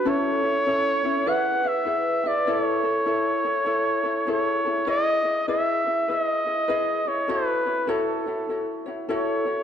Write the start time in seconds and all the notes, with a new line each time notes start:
Already playing: B4
0.05 C#4 E4 A4 C#5
0.43 C#4 E4 C#5
0.66 C#4 E4 A4 C#5
1.03 C#4 E4 C#5
1.26 E4 G#4 B4 E5 F#5
1.63 E4 G#4 B4 E5
1.68 E5
1.85 E4 G#4 B4 E5
2.24 E4 G#4 B4 E5
2.28 D5
2.47 E4 A4 C#5
2.52 C#5
2.84 E4 A4
3.06 E4 A4 C#5
3.45 E4 A4
3.66 E4 A4 C#5
4.03 E4 A4
4.27 E4 G#4 A4 C#5
4.32 C#5
4.65 E4 G#4 A4
4.87 E4 G#4 B4 D#5
5.24 E4 G#4 D#5
5.48 E4 G#4 B4 E5
5.87 E4 G#4
6.08 E4 G#4 B4 D#5 E5
6.21 D#5
6.46 E4 G#4 D#5
6.68 E4 G#4 B4 D#5
7.06 E4 G#4 C#5 D#5
7.28 E4 F#4 A4 B4 C#5
7.66 E4 F#4 C#5
7.87 E4 F#4 A4 C#5
8.26 E4 F#4 C#5
8.49 E4 F#4 A4 C#5
8.86 E4 F#4 C#5
9.09 E4 F#4 A4 C#5
9.13 A4 C#5
9.46 E4 F#4 C#5